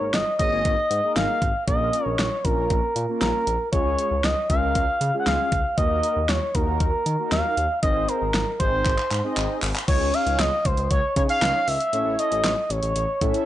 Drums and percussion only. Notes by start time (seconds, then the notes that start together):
0.14 snare, closed hi-hat
0.39 kick, closed hi-hat
0.65 kick, closed hi-hat
0.91 closed hi-hat
1.16 snare, closed hi-hat
1.42 kick, closed hi-hat
1.68 kick, closed hi-hat
1.93 closed hi-hat
2.19 snare, closed hi-hat
2.45 kick, closed hi-hat
2.70 kick, closed hi-hat
2.96 closed hi-hat
3.21 snare, closed hi-hat
3.47 closed hi-hat
3.73 kick, closed hi-hat
3.99 closed hi-hat
4.24 snare, closed hi-hat
4.50 kick, closed hi-hat
4.75 kick, closed hi-hat
5.01 closed hi-hat
5.27 snare, closed hi-hat
5.52 kick, closed hi-hat
5.78 kick, closed hi-hat
6.03 closed hi-hat
6.29 snare, closed hi-hat
6.55 kick, closed hi-hat
6.80 kick, closed hi-hat
7.06 closed hi-hat
7.32 snare, closed hi-hat
7.57 closed hi-hat
7.83 kick, closed hi-hat
8.09 closed hi-hat
8.34 snare, closed hi-hat
8.60 kick, closed hi-hat
8.86 kick, clap, closed hi-hat
8.98 clap
9.11 clap, closed hi-hat
9.37 clap, closed hi-hat
9.62 clap, open hi-hat
9.75 clap
9.88 kick, closed hi-hat, crash
10.14 closed hi-hat
10.27 closed hi-hat
10.39 snare, clap, closed hi-hat
10.65 kick, closed hi-hat
10.77 closed hi-hat
10.91 kick, closed hi-hat
11.16 kick, closed hi-hat
11.29 closed hi-hat
11.42 snare, clap, closed hi-hat
11.68 open hi-hat
11.80 closed hi-hat
11.93 closed hi-hat
12.19 closed hi-hat
12.32 closed hi-hat
12.44 snare, clap, closed hi-hat
12.70 closed hi-hat
12.83 closed hi-hat
12.96 closed hi-hat
13.21 kick, closed hi-hat
13.34 closed hi-hat